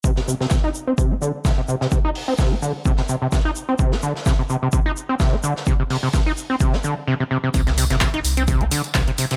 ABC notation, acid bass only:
X:1
M:4/4
L:1/16
Q:"Swing 16ths" 1/4=128
K:Cm
V:1 name="Acid bass" clef=bass
C, C, C, C, C, E z C C, C D, z C, C, C, C, | C, E z C C, C D, z C, C, C, C, C, E z C | C, C D, z C, C, C, C, C, E z C C, C D, z | C, C, C, C, C, E z C C, C D, z C, C, C, C, |
C, C, C, C, C, E z C C, C D, z C, C, C, C, |]